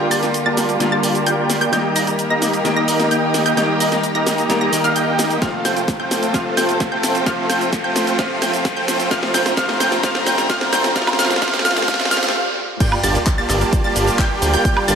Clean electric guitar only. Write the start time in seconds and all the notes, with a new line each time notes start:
Already playing: D3 G3 A#3 F4
0.79 D3 G3 A#3 F4
1.72 D#3 G3 A#3 G4
2.64 D#3 G3 A#3 G4
3.56 D#3 G3 A#3 G4
4.49 D#3 G3 A#3 G4
4.71 D#3 G3 A#3 G4
5.41 C3 F3 A3 F4
6.33 C3 F3 A3 F4
7.25 C3 F3 A3 F4
8.18 C3 F3 A3 F4
9.10 C3 F3 A3 F4
9.56 C3 F3 A3 F4
10.02 C3 F3 A3 F4
10.48 C3 F3 A3 F4
10.95 C3 F3 A3 F4
11.18 C3 F3 A3 F4
11.41 C3 F3 A3 F4
11.64 C3 F3 A3 F4
11.87 C3 F3 A3 F4
12.10 C3 F3 A3 F4